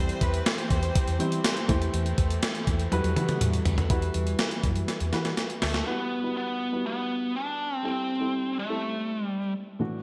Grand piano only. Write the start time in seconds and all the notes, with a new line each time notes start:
Already playing: G3 C4 E4 C5
1.19 G3 C4 E4 C5
1.68 A3 E4 G4 C5
2.91 G3 E4 F#4 B4
3.16 G3 E4 F#4 B4
3.90 G3 E4 F#4 B4
5.12 G3 E4 F#4 B4
5.86 G3 E4 F#4 B4
6.23 G3 E4 F#4 B4
6.72 G3 E4 F#4 B4
7.83 G3 C4 E4 A4
8.20 G3 C4 E4 A4
8.69 G3 C4 E4 A4
9.79 A2 E3 A3 D4 F#4